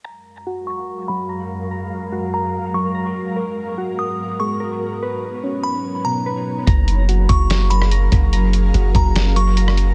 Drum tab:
HH |----------------|----------------|----------------|----------------|
SD |----------------|----------------|----------------|----------------|
BD |----------------|----------------|----------------|----------------|

HH |x-x-x-x-x-x-x-x-|x-x-x-x-x-x-x-x-|
SD |--------o--r----|--------o----r--|
BD |o-----o-------o-|------o---------|